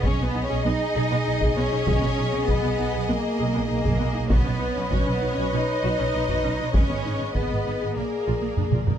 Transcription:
Already playing: G#4 D#5
0.03 B1 C#4 G#4 C#5, taiko
0.20 B1 B3 B4
0.25 B3
0.34 B1 D#4
0.45 C#4 G#4 C#5
0.51 B1
0.63 B1 B3 D#4 D#5
0.96 B1 G#4
1.11 B1 B3
1.25 B1 D#4
1.41 B1 G#4, taiko
1.55 B1 B3 C#4 C#5
1.70 B1 D#4
1.86 B1 G#4, taiko
2.02 B1 B3
2.18 B1 D#4
2.32 B1 B3
2.45 B1 B3 G#4 B4, taiko
2.63 B1 B3
2.78 B1 D#4
2.93 B1 G#4
3.07 B1 A#3 B3 A#4
3.38 B1 G#4
3.53 B1 B3
3.67 A#3 D#4 A#4
3.72 B1
3.83 G#4, taiko
3.88 B1
3.98 B3
4.03 B1
4.14 D#4
4.19 B1
4.28 B3 F#4 B4 C#5 D#5, taiko
4.33 B1
4.44 B1 C#4
4.58 D#4
4.63 B1
4.75 B1 C#4
4.91 B1 C#4 F#4 C#5, taiko
5.06 B1 C#4
5.10 B3 B4
5.21 B1 D#4
5.31 C#4 C#5
5.37 B1 F#4
5.52 B1 C#4 D#4 D#5
5.83 B1 F#4
5.99 B1 C#4
6.14 B1 D#4
6.28 B1 F#4, taiko
6.43 B1 C#4
6.58 B1 D#4
6.73 G#1 C#4 G#4 C#5 D#5, taiko
6.89 G#1 B3
7.05 G#1 D#4
7.20 G#1 B3
7.35 G#1 B3 G#4 B4, taiko
7.50 G#1 B3
7.65 G#1 D#4
7.81 G#1 G#4
7.95 A#1 A#3 G#4 A#4 D5
8.27 A#1 F4
8.41 A#1 A#3
8.57 A#1 D4, taiko low-mid
8.72 A#1 F4, taiko mid
8.87 A#1 A#3, taiko low-mid

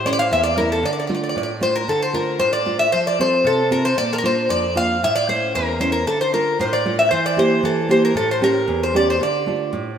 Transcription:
Already playing: A2
0.05 A3 C#4 E4 C5 D5
0.13 D5
0.19 F5
0.31 E2 E5
0.43 D5
0.57 A3 C#4 E4 A#4
0.72 A4
0.83 D3 D5
0.93 D5
1.00 D5
1.07 A3 D4 F4 D5
1.15 D5
1.24 D5
1.29 D5
1.36 A2 D5
1.43 D5
1.61 A3 D4 F4 C5
1.76 A#4
1.88 D3 A4
2.02 C5
2.13 A3 D4 F4 A#4
2.39 A2 C5
2.53 D5
2.66 A3 D4 F4
2.79 E5
2.92 F3 C5
3.07 D5
3.19 C4 F4 A4 C5
3.44 C3 A4
3.71 C4 F4 A4 A#4
3.85 C5
3.98 A#2 D5
4.13 A4 A#4
4.18 A#4
4.23 A#3 D4 F4 C5
4.49 F2 D5
4.75 A#3 D4 F4 F5
5.03 A2 E5
5.16 D5
5.28 A3 C#4 E4 C5
5.55 E2 A#4
5.80 A3 C#4 E4 C5
5.92 A#4
6.07 D3 A4
6.21 C5
6.33 A3 D4 F4 A#4
6.59 A2 C5
6.73 D5
6.85 A3 D4 F4
6.99 E5
7.11 E3 C5
7.26 D5
7.36 A#3 E4 G4 C5
7.63 E3 A4
7.88 A#3 E4 G4 C5
8.05 A#4
8.15 A2 A4
8.31 C5
8.40 A3 C#4 G4 A#4
8.68 E2
8.83 C5
8.94 A3 C#4 G4 D5
9.10 C5
9.21 D3 D5
9.46 A3 D4 F4
9.73 A2

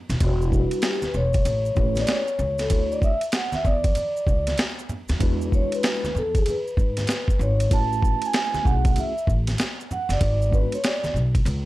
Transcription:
0.09 D#1, snare, ride, maracas
0.20 E1 F#4, kick, ride, maracas
0.42 E4, maracas
0.50 G3 D4 E4 F#4 A#4, kick, maracas
0.55 F#4
0.60 B4
0.71 ride, maracas
0.82 G4, snare, hi-hat pedal, ride, maracas
1.02 B4, muted upright bass stroke, snare, high conga, maracas
1.14 E1 C#5, low conga, maracas
1.33 kick, ride, maracas
1.45 A1, ride, high conga, low conga, maracas
1.65 maracas
1.75 A1 A3 C#4 E4 G4 B4, kick, maracas
1.95 snare, ride, high conga, maracas
1.99 D5
2.07 C#5, snare, hi-hat pedal, ride, maracas
2.28 maracas
2.39 C#2, low conga, maracas
2.58 A4, snare, ride, maracas
2.69 D2 A3 D4 E4 F#4 C#5, kick, ride, maracas
2.92 D5, maracas
3.02 E5, kick, maracas
3.21 ride, maracas
3.32 F#5, snare, hi-hat pedal, ride, maracas
3.52 E5, muted upright bass stroke, snare, high conga, maracas
3.65 E2 D5, kick, low conga, maracas
3.84 kick, ride, maracas
3.95 ride, high conga, low conga, maracas
4.16 maracas
4.27 C#2, kick, maracas
4.47 snare, ride, high conga, maracas
4.58 snare, hi-hat pedal, ride, maracas
4.79 maracas
4.89 low conga, maracas
5.08 D#2, snare, ride, maracas
5.19 E2 G#3 D4 E4 F#4 B4, kick, ride, maracas
5.41 maracas
5.52 C#5, kick, maracas
5.72 B4, ride, maracas
5.83 snare, hi-hat pedal, ride, maracas
6.03 muted upright bass stroke, snare, high conga, maracas
6.15 E2 A4, low conga, maracas
6.35 G#4, kick, ride, maracas
6.46 B4, ride, high conga, low conga, maracas
6.68 maracas
6.77 G#2, kick, maracas
6.97 snare, ride, high conga, maracas
7.07 snare, hi-hat pedal, ride, maracas
7.28 kick, maracas
7.39 G#1 C#5, low conga, maracas
7.60 ride, maracas
7.70 A1 A3 C#4 E4 F#4 B4 A5, kick, ride, maracas
7.93 maracas
8.03 kick, maracas
8.22 G#5, ride, maracas
8.33 snare, hi-hat pedal, ride, maracas
8.54 muted upright bass stroke, snare, high conga, maracas
8.63 B1 A3 C#4 E4 F#4 G#4 F#5, kick, low conga, maracas
8.85 kick, ride, maracas
8.96 E5, ride, high conga, low conga, maracas
9.18 maracas
9.27 A1, kick, maracas
9.47 snare, ride, high conga, maracas
9.58 snare, hi-hat pedal, ride, maracas
9.80 maracas
9.91 F#5, low conga, maracas
10.09 F#1 D5, snare, ride, maracas
10.21 G#1, kick, ride, maracas
10.42 maracas
10.50 G#3 B3 D4 F#4 B4, kick, maracas
10.72 C#5, ride, maracas
10.84 D5, snare, hi-hat pedal, ride, maracas
11.03 muted upright bass stroke, snare, high conga, maracas
11.14 B1, low conga, maracas
11.35 kick, ride, maracas
11.45 C#2, ride, high conga, low conga, maracas

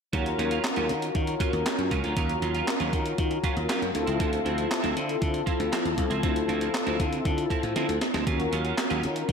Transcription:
0.12 D#2 F#3 C#4 F4 F#4 A#4, kick, closed hi-hat
0.26 closed hi-hat
0.38 D#2 F#3 C#4 F4, closed hi-hat
0.51 F#3 C#4 F4, closed hi-hat
0.64 snare, clap, closed hi-hat
0.76 D#2 F#3 C#4 F4, closed hi-hat
0.89 D#3, muted clean electric guitar stroke, closed hi-hat
1.02 muted clean electric guitar stroke, closed hi-hat
1.15 D#3, muted clean electric guitar stroke, kick, closed hi-hat
1.27 muted clean electric guitar stroke, closed hi-hat
1.40 F#3 C#4 F4, kick, closed hi-hat
1.53 D#2, muted clean electric guitar stroke, closed hi-hat
1.66 muted clean electric guitar stroke, snare, clap, closed hi-hat
1.78 F#2, muted clean electric guitar stroke, closed hi-hat
1.91 C#2 F#3 C#4 F4, kick, closed hi-hat
2.04 D2 F#3 C#4 F4, closed hi-hat
2.17 D#2 F#3 C#4 F4, kick, closed hi-hat
2.29 closed hi-hat
2.42 D#2 F#3 C#4 F4, closed hi-hat
2.55 F#3 C#4 F4, closed hi-hat
2.68 snare, clap, closed hi-hat
2.80 D#2 F#3 C#4 F4, closed hi-hat
2.93 D#3, muted clean electric guitar stroke, kick, closed hi-hat
3.06 muted clean electric guitar stroke, closed hi-hat
3.18 D#3, kick, closed hi-hat
3.31 muted clean electric guitar stroke, closed hi-hat
3.44 F#3 C#4 F4, kick, closed hi-hat
3.56 D#2, muted clean electric guitar stroke, closed hi-hat
3.69 F#3 C#4 F4, snare, clap, closed hi-hat
3.81 F#2, muted clean electric guitar stroke, closed hi-hat
3.94 D2 C4 E4 F4 A4, muted clean electric guitar stroke, closed hi-hat
4.07 C#2 F3 C4 E4, closed hi-hat
4.19 D2 F3 C4 E4, kick, closed hi-hat
4.33 closed hi-hat
4.45 D2 F3 C4 E4, closed hi-hat
4.58 F3 C4 E4, closed hi-hat
4.71 snare, clap, closed hi-hat
4.83 D2 F3 C4 E4, closed hi-hat
4.95 D3, muted clean electric guitar stroke, closed hi-hat
5.08 muted clean electric guitar stroke, closed hi-hat
5.21 D3, muted clean electric guitar stroke, kick, closed hi-hat
5.34 muted clean electric guitar stroke, closed hi-hat
5.46 F3 C4 E4, kick, closed hi-hat
5.59 D2, muted clean electric guitar stroke, closed hi-hat
5.72 F3 C4 E4, snare, clap, closed hi-hat
5.85 D#2, muted clean electric guitar stroke, closed hi-hat
5.98 C2, muted clean electric guitar stroke, kick, closed hi-hat
6.10 C#2 F3 C4 E4, closed hi-hat
6.22 D2 F3 C4 E4, kick, closed hi-hat
6.36 closed hi-hat
6.48 D2 F3 C4 E4, closed hi-hat
6.61 F3 C4 E4, closed hi-hat
6.74 muted clean electric guitar stroke, snare, clap, closed hi-hat
6.86 D2 F3 C4 E4, closed hi-hat
6.99 D3, muted clean electric guitar stroke, kick, closed hi-hat
7.12 muted clean electric guitar stroke, closed hi-hat
7.25 D3, muted clean electric guitar stroke, kick, closed hi-hat
7.37 muted clean electric guitar stroke, closed hi-hat
7.50 F3 C4 E4, kick, closed hi-hat
7.63 A2, muted clean electric guitar stroke, closed hi-hat
7.76 D3 F3 C4 E4, snare, closed hi-hat
7.89 D2, muted clean electric guitar stroke, closed hi-hat
8.01 muted clean electric guitar stroke, snare, closed hi-hat
8.14 D2 F3 C4 E4, snare, closed hi-hat
8.26 D#2 F#3 C#4 F4 F#4 A#4, kick, closed hi-hat
8.40 closed hi-hat
8.52 D#2 F#3 C#4 F4, closed hi-hat
8.64 F#3 C#4 F4, closed hi-hat
8.78 snare, clap, closed hi-hat
8.90 D#2 F#3 C#4 F4, closed hi-hat
9.03 D#3, muted clean electric guitar stroke, closed hi-hat
9.16 muted clean electric guitar stroke, closed hi-hat
9.28 D#3, muted clean electric guitar stroke, kick, closed hi-hat

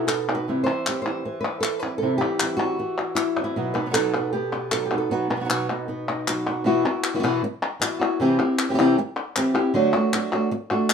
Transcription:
Already playing: B2 B3 D#4 F#4
0.07 A4, clap
0.28 B3 D#4 F#4
0.35 B4
0.48 C3 E3 G3 C4 E4
0.64 E4 C5
0.68 E3 G3 C4
0.86 E3 G3 C4 E4 G4, clap
1.02 C5
1.06 G3 C4 E4
1.25 E3, muted nylon-string guitar stroke
1.41 B4
1.60 A4, clap
1.79 C4 E4 B4
1.84 G3
1.98 C3 E3 A4
2.02 C3 G3 C4 E4
2.18 E3 E4 G4
2.22 G3 C4
2.40 E3 G3 C4 E4, clap
2.57 E4 F#4
2.61 G3 C4
2.79 E3, muted nylon-string guitar stroke
3.00 E4
3.15 E4, clap
3.37 E3 G3 C4 E4
3.44 E4
3.56 B2 F#3 B3 D#4 F#4
3.74 B3 D#4 F#4 B4
3.86 F#3 B3 D#4 F#4
3.90 F#3 B3 D#4 F#4 A4
3.94 B2 F#3 B3 D#4 F#4, clap
4.14 B3 D#4 F#4
4.33 B3 G4, muted nylon-string guitar stroke
4.54 B3
4.72 F#3 B3 D#4 F#4 A4, clap
4.86 G4
4.91 B3 D#4 F#4
4.98 A4
5.10 B2 F#3 B3 D#4 F#4 B4
5.30 B3 D#4 F#4
5.36 F#3 B3 D#4 F#4
5.40 F#3 B3 D#4 F#4
5.45 F#3 B3 D#4 F#4
5.49 B2 F#3 B3 D#4 F#4, clap
5.69 B3 D#4 F#4
5.88 B3, muted nylon-string guitar stroke
6.10 D#4
6.27 F#3 B3 D#4 F#4, clap
6.46 B3 D#4 F#4
6.64 B2 E3 B3 E4 F#4
6.85 B3 E4 F#4
7.04 clap
7.14 E3 B3 E4 F#4
7.19 E3 B3 E4 F#4
7.23 B2 E3 B3 E4 F#4
7.44 muted nylon-string guitar stroke
7.80 E3 B3 E4 F#4, clap
8.00 B3 E4 F#4
8.20 C3 E3 C4 E4 G4
8.39 C4 E4 G4
8.59 clap
8.69 E3 C4 E4 G4
8.74 E3 C4 E4 G4
8.78 C3 E3 C4 E4 G4
8.98 muted nylon-string guitar stroke
9.36 E3 C4 E4 G4, clap
9.54 C4 E4 G4
9.74 D3 F#3 A3 D4 F#4
9.94 A3 D4 F#4
10.13 F#3 A3 D4 F#4, clap
10.32 A3 D4 F#4
10.51 muted nylon-string guitar stroke
10.71 A3 D4 F#4
10.90 clap

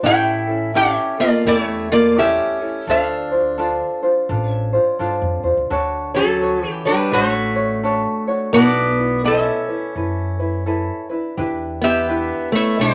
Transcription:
0.03 A1 C#4 E4 G4 A4 C#5 G5
0.47 C#4 E4 A4
0.74 C#4 E4 G4 A4 E5
1.18 A#3 F4 A4 D5
1.45 E2 A#3 C#4 E4 G4 A4 D5
1.57 A3 C#5
1.89 A#3 F4 A4 D5
2.17 C#4 E4 G4 A4 E5
2.61 C#4 E4 A4
2.87 D2 D4 F4 A4 C5 F5
3.31 D4 F4 C5
3.58 D4 F4 A4 C5
4.03 D4 F4 C5
4.29 A1 D4 F4 A4 C5
4.49 C#4 E5
4.73 D4 F4 C5
4.99 G2 D4 F4 A4 C5
5.22 F2
5.43 E2 D4 F4 C5
5.57 D2
5.70 D2 D4 F#4 A4 C#5
6.14 F#3 C#4 F#4 A4 C#5
6.41 F#4 A4 C#5
6.65 E3
6.70 G4
6.85 G3 D4 F#4 B4 C#5
7.12 A1 A3 D4 F#4 A4 C#5
7.56 D4 F#4 C#5
7.83 D4 F#4 A4 C#5
8.27 D4 F#4 C#5
8.53 B1 B3 D4 E4 F#4 A4 B4 D5
8.98 D4 E4 B4
9.24 C#4 E4 A4 B4 E5
9.68 E4 B4
9.95 F#2 E4 A4 B4
10.39 E4 B4
10.66 E4 A4 B4
11.10 D4 E4 B4
11.37 E2 D4 E4 G4 B4
11.81 B3 D4 E4 G4 B4 E5
12.08 D4 E4 G4 B4
12.52 A3 D4 E4 B4 C#5
12.79 B1 G3 D4 E4 G4 B4 C5

